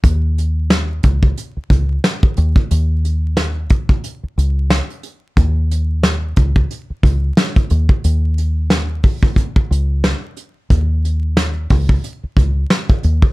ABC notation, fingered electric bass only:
X:1
M:4/4
L:1/16
Q:"Swing 16ths" 1/4=90
K:Dbmix
V:1 name="Fingered electric bass" clef=bass
E,,6 D,,2 z2 D,,2 z2 ^D,, z | ^D,,6 =B,,,2 z2 ^C,,3 z3 | E,,6 D,,2 z2 D,,2 z2 ^D,, z | ^D,,6 =B,,,2 z2 ^C,,3 z3 |
E,,6 D,,2 z2 D,,2 z2 ^D,, z |]